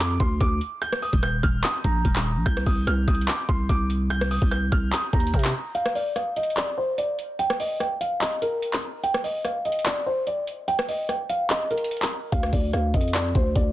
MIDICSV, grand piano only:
0, 0, Header, 1, 2, 480
1, 0, Start_track
1, 0, Tempo, 410959
1, 953, Time_signature, 4, 2, 24, 8
1, 16030, End_track
2, 0, Start_track
2, 0, Title_t, "Grand piano"
2, 0, Program_c, 0, 0
2, 0, Note_on_c, 0, 86, 83
2, 188, Note_off_c, 0, 86, 0
2, 233, Note_on_c, 0, 84, 88
2, 429, Note_off_c, 0, 84, 0
2, 474, Note_on_c, 0, 86, 89
2, 670, Note_off_c, 0, 86, 0
2, 954, Note_on_c, 0, 91, 105
2, 1150, Note_off_c, 0, 91, 0
2, 1196, Note_on_c, 0, 87, 83
2, 1391, Note_off_c, 0, 87, 0
2, 1435, Note_on_c, 0, 91, 86
2, 1631, Note_off_c, 0, 91, 0
2, 1673, Note_on_c, 0, 89, 82
2, 1869, Note_off_c, 0, 89, 0
2, 1913, Note_on_c, 0, 87, 87
2, 2109, Note_off_c, 0, 87, 0
2, 2153, Note_on_c, 0, 82, 78
2, 2830, Note_off_c, 0, 82, 0
2, 2872, Note_on_c, 0, 91, 99
2, 3068, Note_off_c, 0, 91, 0
2, 3112, Note_on_c, 0, 87, 78
2, 3309, Note_off_c, 0, 87, 0
2, 3354, Note_on_c, 0, 89, 82
2, 3550, Note_off_c, 0, 89, 0
2, 3594, Note_on_c, 0, 87, 77
2, 3790, Note_off_c, 0, 87, 0
2, 3832, Note_on_c, 0, 86, 75
2, 4029, Note_off_c, 0, 86, 0
2, 4072, Note_on_c, 0, 84, 89
2, 4269, Note_off_c, 0, 84, 0
2, 4313, Note_on_c, 0, 86, 84
2, 4509, Note_off_c, 0, 86, 0
2, 4792, Note_on_c, 0, 91, 111
2, 4989, Note_off_c, 0, 91, 0
2, 5034, Note_on_c, 0, 87, 77
2, 5230, Note_off_c, 0, 87, 0
2, 5272, Note_on_c, 0, 91, 92
2, 5468, Note_off_c, 0, 91, 0
2, 5513, Note_on_c, 0, 89, 83
2, 5709, Note_off_c, 0, 89, 0
2, 5755, Note_on_c, 0, 87, 87
2, 5950, Note_off_c, 0, 87, 0
2, 5991, Note_on_c, 0, 82, 75
2, 6669, Note_off_c, 0, 82, 0
2, 6714, Note_on_c, 0, 77, 101
2, 6910, Note_off_c, 0, 77, 0
2, 6951, Note_on_c, 0, 74, 80
2, 7148, Note_off_c, 0, 74, 0
2, 7192, Note_on_c, 0, 77, 82
2, 7389, Note_off_c, 0, 77, 0
2, 7434, Note_on_c, 0, 75, 76
2, 7630, Note_off_c, 0, 75, 0
2, 7672, Note_on_c, 0, 74, 82
2, 7869, Note_off_c, 0, 74, 0
2, 7913, Note_on_c, 0, 72, 81
2, 8109, Note_off_c, 0, 72, 0
2, 8153, Note_on_c, 0, 74, 85
2, 8349, Note_off_c, 0, 74, 0
2, 8633, Note_on_c, 0, 79, 104
2, 8829, Note_off_c, 0, 79, 0
2, 8876, Note_on_c, 0, 75, 78
2, 9071, Note_off_c, 0, 75, 0
2, 9113, Note_on_c, 0, 79, 81
2, 9309, Note_off_c, 0, 79, 0
2, 9352, Note_on_c, 0, 77, 78
2, 9548, Note_off_c, 0, 77, 0
2, 9592, Note_on_c, 0, 75, 84
2, 9789, Note_off_c, 0, 75, 0
2, 9833, Note_on_c, 0, 70, 74
2, 10510, Note_off_c, 0, 70, 0
2, 10552, Note_on_c, 0, 79, 102
2, 10749, Note_off_c, 0, 79, 0
2, 10792, Note_on_c, 0, 75, 76
2, 10989, Note_off_c, 0, 75, 0
2, 11034, Note_on_c, 0, 77, 80
2, 11230, Note_off_c, 0, 77, 0
2, 11275, Note_on_c, 0, 75, 77
2, 11470, Note_off_c, 0, 75, 0
2, 11513, Note_on_c, 0, 74, 78
2, 11709, Note_off_c, 0, 74, 0
2, 11754, Note_on_c, 0, 72, 84
2, 11949, Note_off_c, 0, 72, 0
2, 11994, Note_on_c, 0, 74, 79
2, 12189, Note_off_c, 0, 74, 0
2, 12472, Note_on_c, 0, 79, 107
2, 12669, Note_off_c, 0, 79, 0
2, 12713, Note_on_c, 0, 75, 75
2, 12909, Note_off_c, 0, 75, 0
2, 12952, Note_on_c, 0, 79, 85
2, 13149, Note_off_c, 0, 79, 0
2, 13193, Note_on_c, 0, 77, 80
2, 13389, Note_off_c, 0, 77, 0
2, 13434, Note_on_c, 0, 75, 86
2, 13630, Note_off_c, 0, 75, 0
2, 13672, Note_on_c, 0, 70, 74
2, 14350, Note_off_c, 0, 70, 0
2, 14393, Note_on_c, 0, 77, 103
2, 14589, Note_off_c, 0, 77, 0
2, 14632, Note_on_c, 0, 74, 82
2, 14828, Note_off_c, 0, 74, 0
2, 14872, Note_on_c, 0, 77, 82
2, 15068, Note_off_c, 0, 77, 0
2, 15116, Note_on_c, 0, 75, 77
2, 15311, Note_off_c, 0, 75, 0
2, 15352, Note_on_c, 0, 74, 80
2, 15549, Note_off_c, 0, 74, 0
2, 15594, Note_on_c, 0, 72, 84
2, 15790, Note_off_c, 0, 72, 0
2, 15834, Note_on_c, 0, 74, 88
2, 16030, Note_off_c, 0, 74, 0
2, 16030, End_track
0, 0, End_of_file